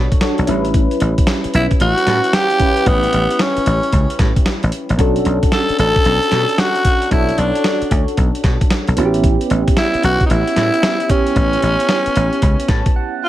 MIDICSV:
0, 0, Header, 1, 6, 480
1, 0, Start_track
1, 0, Tempo, 530973
1, 669, Time_signature, 4, 2, 24, 8
1, 12012, End_track
2, 0, Start_track
2, 0, Title_t, "Synth keys"
2, 0, Program_c, 0, 88
2, 0, Control_c, 0, 64, 127
2, 0, Note_on_c, 0, 62, 61
2, 0, Note_on_c, 0, 66, 57
2, 0, Note_on_c, 0, 69, 60
2, 0, Note_on_c, 0, 73, 75
2, 157, Note_off_c, 0, 62, 0
2, 161, Note_off_c, 0, 66, 0
2, 164, Note_off_c, 0, 69, 0
2, 169, Note_off_c, 0, 73, 0
2, 189, Note_on_c, 0, 62, 58
2, 192, Note_on_c, 0, 66, 51
2, 196, Note_on_c, 0, 69, 52
2, 200, Note_on_c, 0, 73, 65
2, 424, Note_on_c, 0, 61, 76
2, 429, Note_off_c, 0, 62, 0
2, 431, Note_off_c, 0, 66, 0
2, 431, Note_on_c, 0, 64, 72
2, 432, Note_off_c, 0, 69, 0
2, 434, Note_off_c, 0, 73, 0
2, 438, Note_on_c, 0, 55, 62
2, 441, Control_c, 0, 64, 0
2, 445, Note_on_c, 0, 71, 76
2, 609, Control_c, 0, 64, 127
2, 2310, Note_off_c, 0, 61, 0
2, 2314, Note_off_c, 0, 64, 0
2, 2317, Note_off_c, 0, 55, 0
2, 2321, Note_off_c, 0, 71, 0
2, 2342, Note_on_c, 0, 61, 65
2, 2350, Note_on_c, 0, 64, 57
2, 2357, Note_on_c, 0, 67, 57
2, 2364, Note_on_c, 0, 71, 69
2, 4229, Note_off_c, 0, 61, 0
2, 4233, Note_off_c, 0, 64, 0
2, 4237, Note_off_c, 0, 67, 0
2, 4240, Note_off_c, 0, 71, 0
2, 4501, Note_on_c, 0, 61, 71
2, 4510, Note_on_c, 0, 62, 67
2, 4516, Note_on_c, 0, 66, 68
2, 4521, Control_c, 0, 64, 0
2, 4524, Note_on_c, 0, 69, 78
2, 4683, Control_c, 0, 64, 127
2, 6389, Note_off_c, 0, 61, 0
2, 6393, Note_off_c, 0, 62, 0
2, 6396, Note_off_c, 0, 66, 0
2, 6400, Note_off_c, 0, 69, 0
2, 6424, Note_on_c, 0, 73, 65
2, 6431, Note_on_c, 0, 62, 60
2, 6437, Note_on_c, 0, 66, 59
2, 6444, Note_on_c, 0, 69, 72
2, 8073, Note_off_c, 0, 73, 0
2, 8076, Note_off_c, 0, 62, 0
2, 8080, Note_off_c, 0, 66, 0
2, 8083, Note_off_c, 0, 69, 0
2, 8103, Note_on_c, 0, 59, 72
2, 8111, Note_on_c, 0, 61, 71
2, 8118, Note_on_c, 0, 64, 69
2, 8120, Control_c, 0, 64, 0
2, 8126, Note_on_c, 0, 66, 68
2, 8183, Note_on_c, 0, 67, 89
2, 8192, Note_off_c, 0, 66, 0
2, 8264, Control_c, 0, 64, 127
2, 9990, Note_off_c, 0, 59, 0
2, 9994, Note_off_c, 0, 61, 0
2, 9997, Note_off_c, 0, 64, 0
2, 10023, Note_on_c, 0, 59, 61
2, 10030, Note_off_c, 0, 67, 0
2, 10031, Note_on_c, 0, 61, 53
2, 10038, Note_on_c, 0, 64, 55
2, 10045, Note_on_c, 0, 67, 68
2, 11474, Note_on_c, 0, 81, 73
2, 11695, Note_off_c, 0, 81, 0
2, 11716, Note_on_c, 0, 78, 73
2, 11910, Note_off_c, 0, 59, 0
2, 11914, Note_off_c, 0, 61, 0
2, 11917, Note_off_c, 0, 64, 0
2, 11921, Note_off_c, 0, 67, 0
2, 11936, Note_off_c, 0, 78, 0
2, 11955, Note_on_c, 0, 78, 66
2, 12012, Note_off_c, 0, 78, 0
2, 12012, End_track
3, 0, Start_track
3, 0, Title_t, "Tenor saxophone"
3, 0, Program_c, 1, 66
3, 1401, Note_on_c, 1, 64, 87
3, 1506, Note_off_c, 1, 64, 0
3, 1637, Note_on_c, 1, 66, 103
3, 2116, Note_on_c, 1, 67, 113
3, 2129, Note_off_c, 1, 66, 0
3, 2595, Note_on_c, 1, 59, 95
3, 2609, Note_off_c, 1, 67, 0
3, 3077, Note_on_c, 1, 61, 82
3, 3090, Note_off_c, 1, 59, 0
3, 3793, Note_off_c, 1, 61, 0
3, 4998, Note_on_c, 1, 69, 102
3, 5217, Note_off_c, 1, 69, 0
3, 5239, Note_on_c, 1, 69, 116
3, 5957, Note_on_c, 1, 66, 104
3, 5971, Note_off_c, 1, 69, 0
3, 6430, Note_off_c, 1, 66, 0
3, 6435, Note_on_c, 1, 64, 90
3, 6677, Note_on_c, 1, 62, 81
3, 6691, Note_off_c, 1, 64, 0
3, 7153, Note_off_c, 1, 62, 0
3, 8841, Note_on_c, 1, 64, 101
3, 9058, Note_off_c, 1, 64, 0
3, 9080, Note_on_c, 1, 66, 104
3, 9257, Note_off_c, 1, 66, 0
3, 9274, Note_on_c, 1, 63, 71
3, 9318, Note_on_c, 1, 64, 108
3, 9332, Note_off_c, 1, 63, 0
3, 10039, Note_on_c, 1, 61, 95
3, 10052, Note_off_c, 1, 64, 0
3, 11714, Note_off_c, 1, 61, 0
3, 11961, Note_on_c, 1, 66, 117
3, 12012, Note_off_c, 1, 66, 0
3, 12012, End_track
4, 0, Start_track
4, 0, Title_t, "Slap bass"
4, 0, Program_c, 2, 36
4, 350, Note_on_c, 2, 35, 85
4, 409, Note_off_c, 2, 35, 0
4, 435, Note_on_c, 2, 33, 95
4, 780, Note_off_c, 2, 33, 0
4, 915, Note_on_c, 2, 33, 98
4, 1026, Note_off_c, 2, 33, 0
4, 1394, Note_on_c, 2, 35, 93
4, 1505, Note_off_c, 2, 35, 0
4, 1633, Note_on_c, 2, 33, 97
4, 1745, Note_off_c, 2, 33, 0
4, 1873, Note_on_c, 2, 45, 97
4, 1985, Note_off_c, 2, 45, 0
4, 2591, Note_on_c, 2, 33, 101
4, 2764, Note_off_c, 2, 33, 0
4, 2835, Note_on_c, 2, 33, 99
4, 2946, Note_off_c, 2, 33, 0
4, 3314, Note_on_c, 2, 33, 86
4, 3425, Note_off_c, 2, 33, 0
4, 3552, Note_on_c, 2, 37, 100
4, 3664, Note_off_c, 2, 37, 0
4, 3790, Note_on_c, 2, 45, 95
4, 3903, Note_off_c, 2, 45, 0
4, 4189, Note_on_c, 2, 33, 85
4, 4248, Note_off_c, 2, 33, 0
4, 4428, Note_on_c, 2, 33, 90
4, 4488, Note_off_c, 2, 33, 0
4, 4511, Note_on_c, 2, 35, 98
4, 4684, Note_off_c, 2, 35, 0
4, 4752, Note_on_c, 2, 35, 96
4, 4864, Note_off_c, 2, 35, 0
4, 5234, Note_on_c, 2, 33, 85
4, 5345, Note_off_c, 2, 33, 0
4, 5474, Note_on_c, 2, 35, 102
4, 5585, Note_off_c, 2, 35, 0
4, 5715, Note_on_c, 2, 47, 95
4, 5826, Note_off_c, 2, 47, 0
4, 6433, Note_on_c, 2, 35, 104
4, 6605, Note_off_c, 2, 35, 0
4, 6672, Note_on_c, 2, 35, 108
4, 6784, Note_off_c, 2, 35, 0
4, 7154, Note_on_c, 2, 38, 88
4, 7265, Note_off_c, 2, 38, 0
4, 7393, Note_on_c, 2, 35, 92
4, 7504, Note_off_c, 2, 35, 0
4, 7630, Note_on_c, 2, 47, 91
4, 7743, Note_off_c, 2, 47, 0
4, 8028, Note_on_c, 2, 35, 90
4, 8088, Note_off_c, 2, 35, 0
4, 8113, Note_on_c, 2, 33, 97
4, 8459, Note_off_c, 2, 33, 0
4, 8593, Note_on_c, 2, 33, 102
4, 8705, Note_off_c, 2, 33, 0
4, 9074, Note_on_c, 2, 35, 90
4, 9185, Note_off_c, 2, 35, 0
4, 9315, Note_on_c, 2, 33, 100
4, 9426, Note_off_c, 2, 33, 0
4, 9556, Note_on_c, 2, 45, 90
4, 9666, Note_off_c, 2, 45, 0
4, 10271, Note_on_c, 2, 33, 99
4, 10444, Note_off_c, 2, 33, 0
4, 10513, Note_on_c, 2, 33, 106
4, 10625, Note_off_c, 2, 33, 0
4, 10995, Note_on_c, 2, 33, 86
4, 11106, Note_off_c, 2, 33, 0
4, 11233, Note_on_c, 2, 37, 96
4, 11344, Note_off_c, 2, 37, 0
4, 11471, Note_on_c, 2, 45, 91
4, 11583, Note_off_c, 2, 45, 0
4, 12012, End_track
5, 0, Start_track
5, 0, Title_t, "Muted slap bass strokes"
5, 194, Note_on_c, 9, 29, 45
5, 285, Note_off_c, 9, 29, 0
5, 1310, Note_on_c, 9, 29, 47
5, 1400, Note_off_c, 9, 29, 0
5, 3230, Note_on_c, 9, 29, 46
5, 3320, Note_off_c, 9, 29, 0
5, 4033, Note_on_c, 9, 29, 49
5, 4123, Note_off_c, 9, 29, 0
5, 5150, Note_on_c, 9, 29, 47
5, 5241, Note_off_c, 9, 29, 0
5, 7068, Note_on_c, 9, 29, 46
5, 7159, Note_off_c, 9, 29, 0
5, 7873, Note_on_c, 9, 29, 50
5, 7964, Note_off_c, 9, 29, 0
5, 8990, Note_on_c, 9, 29, 45
5, 9081, Note_off_c, 9, 29, 0
5, 10910, Note_on_c, 9, 29, 46
5, 11001, Note_off_c, 9, 29, 0
5, 12012, End_track
6, 0, Start_track
6, 0, Title_t, "Drums"
6, 106, Note_on_c, 9, 36, 99
6, 106, Note_on_c, 9, 42, 51
6, 189, Note_on_c, 9, 38, 111
6, 190, Note_off_c, 9, 42, 0
6, 190, Note_on_c, 9, 42, 72
6, 196, Note_off_c, 9, 36, 0
6, 280, Note_off_c, 9, 38, 0
6, 280, Note_off_c, 9, 42, 0
6, 343, Note_on_c, 9, 42, 46
6, 428, Note_off_c, 9, 42, 0
6, 428, Note_on_c, 9, 42, 86
6, 518, Note_off_c, 9, 42, 0
6, 585, Note_on_c, 9, 42, 51
6, 669, Note_off_c, 9, 42, 0
6, 669, Note_on_c, 9, 36, 98
6, 669, Note_on_c, 9, 42, 68
6, 760, Note_off_c, 9, 36, 0
6, 760, Note_off_c, 9, 42, 0
6, 825, Note_on_c, 9, 42, 49
6, 907, Note_off_c, 9, 42, 0
6, 907, Note_on_c, 9, 42, 71
6, 997, Note_off_c, 9, 42, 0
6, 1066, Note_on_c, 9, 42, 62
6, 1067, Note_on_c, 9, 36, 99
6, 1147, Note_on_c, 9, 38, 116
6, 1148, Note_off_c, 9, 42, 0
6, 1148, Note_on_c, 9, 42, 72
6, 1157, Note_off_c, 9, 36, 0
6, 1237, Note_off_c, 9, 38, 0
6, 1239, Note_off_c, 9, 42, 0
6, 1303, Note_on_c, 9, 42, 49
6, 1389, Note_off_c, 9, 42, 0
6, 1389, Note_on_c, 9, 42, 75
6, 1479, Note_off_c, 9, 42, 0
6, 1543, Note_on_c, 9, 42, 43
6, 1547, Note_on_c, 9, 36, 86
6, 1627, Note_off_c, 9, 42, 0
6, 1627, Note_on_c, 9, 42, 69
6, 1637, Note_off_c, 9, 36, 0
6, 1718, Note_off_c, 9, 42, 0
6, 1787, Note_on_c, 9, 42, 58
6, 1868, Note_on_c, 9, 38, 59
6, 1869, Note_off_c, 9, 42, 0
6, 1869, Note_on_c, 9, 42, 67
6, 1958, Note_off_c, 9, 38, 0
6, 1960, Note_off_c, 9, 42, 0
6, 2024, Note_on_c, 9, 42, 48
6, 2109, Note_off_c, 9, 42, 0
6, 2109, Note_on_c, 9, 38, 105
6, 2109, Note_on_c, 9, 42, 72
6, 2199, Note_off_c, 9, 38, 0
6, 2200, Note_off_c, 9, 42, 0
6, 2263, Note_on_c, 9, 42, 44
6, 2346, Note_off_c, 9, 42, 0
6, 2346, Note_on_c, 9, 42, 81
6, 2349, Note_on_c, 9, 36, 86
6, 2436, Note_off_c, 9, 42, 0
6, 2439, Note_off_c, 9, 36, 0
6, 2502, Note_on_c, 9, 42, 51
6, 2588, Note_off_c, 9, 42, 0
6, 2588, Note_on_c, 9, 36, 106
6, 2588, Note_on_c, 9, 42, 70
6, 2678, Note_off_c, 9, 42, 0
6, 2679, Note_off_c, 9, 36, 0
6, 2744, Note_on_c, 9, 42, 46
6, 2828, Note_off_c, 9, 42, 0
6, 2828, Note_on_c, 9, 42, 72
6, 2918, Note_off_c, 9, 42, 0
6, 2988, Note_on_c, 9, 42, 58
6, 3068, Note_on_c, 9, 38, 104
6, 3069, Note_off_c, 9, 42, 0
6, 3069, Note_on_c, 9, 42, 65
6, 3158, Note_off_c, 9, 38, 0
6, 3160, Note_off_c, 9, 42, 0
6, 3224, Note_on_c, 9, 42, 49
6, 3310, Note_off_c, 9, 42, 0
6, 3310, Note_on_c, 9, 42, 74
6, 3400, Note_off_c, 9, 42, 0
6, 3465, Note_on_c, 9, 42, 41
6, 3548, Note_off_c, 9, 42, 0
6, 3548, Note_on_c, 9, 42, 74
6, 3550, Note_on_c, 9, 36, 86
6, 3639, Note_off_c, 9, 42, 0
6, 3641, Note_off_c, 9, 36, 0
6, 3707, Note_on_c, 9, 42, 55
6, 3788, Note_on_c, 9, 36, 93
6, 3788, Note_on_c, 9, 38, 59
6, 3789, Note_off_c, 9, 42, 0
6, 3789, Note_on_c, 9, 42, 69
6, 3878, Note_off_c, 9, 38, 0
6, 3879, Note_off_c, 9, 36, 0
6, 3879, Note_off_c, 9, 42, 0
6, 3945, Note_on_c, 9, 36, 91
6, 3946, Note_on_c, 9, 42, 48
6, 4030, Note_off_c, 9, 42, 0
6, 4030, Note_on_c, 9, 38, 114
6, 4030, Note_on_c, 9, 42, 76
6, 4035, Note_off_c, 9, 36, 0
6, 4120, Note_off_c, 9, 38, 0
6, 4121, Note_off_c, 9, 42, 0
6, 4184, Note_on_c, 9, 42, 47
6, 4267, Note_off_c, 9, 42, 0
6, 4267, Note_on_c, 9, 42, 85
6, 4357, Note_off_c, 9, 42, 0
6, 4423, Note_on_c, 9, 42, 48
6, 4509, Note_off_c, 9, 42, 0
6, 4509, Note_on_c, 9, 36, 100
6, 4509, Note_on_c, 9, 42, 69
6, 4599, Note_off_c, 9, 36, 0
6, 4599, Note_off_c, 9, 42, 0
6, 4663, Note_on_c, 9, 42, 48
6, 4748, Note_off_c, 9, 42, 0
6, 4748, Note_on_c, 9, 42, 66
6, 4838, Note_off_c, 9, 42, 0
6, 4907, Note_on_c, 9, 36, 98
6, 4907, Note_on_c, 9, 42, 62
6, 4988, Note_on_c, 9, 38, 119
6, 4990, Note_off_c, 9, 42, 0
6, 4990, Note_on_c, 9, 42, 65
6, 4997, Note_off_c, 9, 36, 0
6, 5079, Note_off_c, 9, 38, 0
6, 5080, Note_off_c, 9, 42, 0
6, 5145, Note_on_c, 9, 42, 47
6, 5230, Note_off_c, 9, 42, 0
6, 5230, Note_on_c, 9, 42, 75
6, 5320, Note_off_c, 9, 42, 0
6, 5386, Note_on_c, 9, 42, 44
6, 5387, Note_on_c, 9, 36, 91
6, 5469, Note_off_c, 9, 42, 0
6, 5469, Note_on_c, 9, 42, 66
6, 5477, Note_off_c, 9, 36, 0
6, 5560, Note_off_c, 9, 42, 0
6, 5627, Note_on_c, 9, 42, 58
6, 5709, Note_on_c, 9, 38, 63
6, 5710, Note_off_c, 9, 42, 0
6, 5710, Note_on_c, 9, 42, 66
6, 5799, Note_off_c, 9, 38, 0
6, 5801, Note_off_c, 9, 42, 0
6, 5866, Note_on_c, 9, 42, 48
6, 5950, Note_on_c, 9, 38, 113
6, 5951, Note_off_c, 9, 42, 0
6, 5951, Note_on_c, 9, 42, 72
6, 6041, Note_off_c, 9, 38, 0
6, 6041, Note_off_c, 9, 42, 0
6, 6106, Note_on_c, 9, 42, 47
6, 6189, Note_off_c, 9, 42, 0
6, 6189, Note_on_c, 9, 42, 86
6, 6190, Note_on_c, 9, 36, 91
6, 6280, Note_off_c, 9, 42, 0
6, 6281, Note_off_c, 9, 36, 0
6, 6345, Note_on_c, 9, 42, 54
6, 6430, Note_off_c, 9, 42, 0
6, 6430, Note_on_c, 9, 36, 109
6, 6430, Note_on_c, 9, 42, 70
6, 6520, Note_off_c, 9, 36, 0
6, 6520, Note_off_c, 9, 42, 0
6, 6587, Note_on_c, 9, 42, 47
6, 6670, Note_off_c, 9, 42, 0
6, 6670, Note_on_c, 9, 42, 70
6, 6760, Note_off_c, 9, 42, 0
6, 6829, Note_on_c, 9, 42, 61
6, 6909, Note_on_c, 9, 38, 107
6, 6910, Note_off_c, 9, 42, 0
6, 6910, Note_on_c, 9, 42, 68
6, 6999, Note_off_c, 9, 38, 0
6, 7001, Note_off_c, 9, 42, 0
6, 7066, Note_on_c, 9, 42, 47
6, 7151, Note_off_c, 9, 42, 0
6, 7151, Note_on_c, 9, 42, 79
6, 7152, Note_on_c, 9, 36, 96
6, 7241, Note_off_c, 9, 42, 0
6, 7242, Note_off_c, 9, 36, 0
6, 7306, Note_on_c, 9, 42, 41
6, 7389, Note_off_c, 9, 42, 0
6, 7389, Note_on_c, 9, 42, 71
6, 7391, Note_on_c, 9, 36, 85
6, 7479, Note_off_c, 9, 42, 0
6, 7481, Note_off_c, 9, 36, 0
6, 7548, Note_on_c, 9, 42, 54
6, 7627, Note_on_c, 9, 38, 61
6, 7628, Note_on_c, 9, 36, 99
6, 7629, Note_off_c, 9, 42, 0
6, 7629, Note_on_c, 9, 42, 62
6, 7718, Note_off_c, 9, 38, 0
6, 7719, Note_off_c, 9, 36, 0
6, 7719, Note_off_c, 9, 42, 0
6, 7785, Note_on_c, 9, 36, 98
6, 7786, Note_on_c, 9, 42, 49
6, 7869, Note_on_c, 9, 38, 108
6, 7870, Note_off_c, 9, 42, 0
6, 7870, Note_on_c, 9, 42, 74
6, 7875, Note_off_c, 9, 36, 0
6, 7959, Note_off_c, 9, 38, 0
6, 7960, Note_off_c, 9, 42, 0
6, 8023, Note_on_c, 9, 42, 49
6, 8107, Note_off_c, 9, 42, 0
6, 8107, Note_on_c, 9, 42, 92
6, 8197, Note_off_c, 9, 42, 0
6, 8263, Note_on_c, 9, 42, 56
6, 8349, Note_on_c, 9, 36, 106
6, 8350, Note_off_c, 9, 42, 0
6, 8350, Note_on_c, 9, 42, 69
6, 8439, Note_off_c, 9, 36, 0
6, 8440, Note_off_c, 9, 42, 0
6, 8506, Note_on_c, 9, 42, 52
6, 8589, Note_off_c, 9, 42, 0
6, 8589, Note_on_c, 9, 42, 67
6, 8679, Note_off_c, 9, 42, 0
6, 8747, Note_on_c, 9, 36, 98
6, 8748, Note_on_c, 9, 42, 61
6, 8829, Note_on_c, 9, 38, 113
6, 8830, Note_off_c, 9, 42, 0
6, 8830, Note_on_c, 9, 42, 67
6, 8838, Note_off_c, 9, 36, 0
6, 8919, Note_off_c, 9, 38, 0
6, 8921, Note_off_c, 9, 42, 0
6, 8985, Note_on_c, 9, 42, 49
6, 9070, Note_off_c, 9, 42, 0
6, 9070, Note_on_c, 9, 42, 77
6, 9161, Note_off_c, 9, 42, 0
6, 9225, Note_on_c, 9, 42, 40
6, 9227, Note_on_c, 9, 36, 86
6, 9311, Note_off_c, 9, 42, 0
6, 9311, Note_on_c, 9, 42, 71
6, 9318, Note_off_c, 9, 36, 0
6, 9401, Note_off_c, 9, 42, 0
6, 9469, Note_on_c, 9, 42, 56
6, 9549, Note_on_c, 9, 38, 65
6, 9551, Note_off_c, 9, 42, 0
6, 9551, Note_on_c, 9, 42, 67
6, 9640, Note_off_c, 9, 38, 0
6, 9641, Note_off_c, 9, 42, 0
6, 9707, Note_on_c, 9, 42, 47
6, 9791, Note_off_c, 9, 42, 0
6, 9791, Note_on_c, 9, 38, 120
6, 9791, Note_on_c, 9, 42, 73
6, 9881, Note_off_c, 9, 38, 0
6, 9882, Note_off_c, 9, 42, 0
6, 9945, Note_on_c, 9, 42, 45
6, 10030, Note_off_c, 9, 42, 0
6, 10030, Note_on_c, 9, 36, 93
6, 10030, Note_on_c, 9, 42, 85
6, 10120, Note_off_c, 9, 42, 0
6, 10121, Note_off_c, 9, 36, 0
6, 10184, Note_on_c, 9, 42, 52
6, 10269, Note_off_c, 9, 42, 0
6, 10269, Note_on_c, 9, 36, 99
6, 10269, Note_on_c, 9, 42, 71
6, 10359, Note_off_c, 9, 42, 0
6, 10360, Note_off_c, 9, 36, 0
6, 10425, Note_on_c, 9, 42, 46
6, 10508, Note_off_c, 9, 42, 0
6, 10508, Note_on_c, 9, 42, 70
6, 10599, Note_off_c, 9, 42, 0
6, 10667, Note_on_c, 9, 42, 62
6, 10745, Note_on_c, 9, 38, 118
6, 10747, Note_off_c, 9, 42, 0
6, 10747, Note_on_c, 9, 42, 68
6, 10836, Note_off_c, 9, 38, 0
6, 10837, Note_off_c, 9, 42, 0
6, 10902, Note_on_c, 9, 42, 48
6, 10989, Note_off_c, 9, 42, 0
6, 10989, Note_on_c, 9, 42, 78
6, 11079, Note_off_c, 9, 42, 0
6, 11144, Note_on_c, 9, 42, 39
6, 11228, Note_off_c, 9, 42, 0
6, 11228, Note_on_c, 9, 42, 69
6, 11230, Note_on_c, 9, 36, 91
6, 11318, Note_off_c, 9, 42, 0
6, 11321, Note_off_c, 9, 36, 0
6, 11387, Note_on_c, 9, 42, 56
6, 11467, Note_on_c, 9, 38, 58
6, 11468, Note_off_c, 9, 42, 0
6, 11468, Note_on_c, 9, 42, 63
6, 11469, Note_on_c, 9, 36, 98
6, 11557, Note_off_c, 9, 38, 0
6, 11558, Note_off_c, 9, 42, 0
6, 11559, Note_off_c, 9, 36, 0
6, 11624, Note_on_c, 9, 42, 47
6, 11625, Note_on_c, 9, 36, 97
6, 11715, Note_off_c, 9, 36, 0
6, 11715, Note_off_c, 9, 42, 0
6, 12012, End_track
0, 0, End_of_file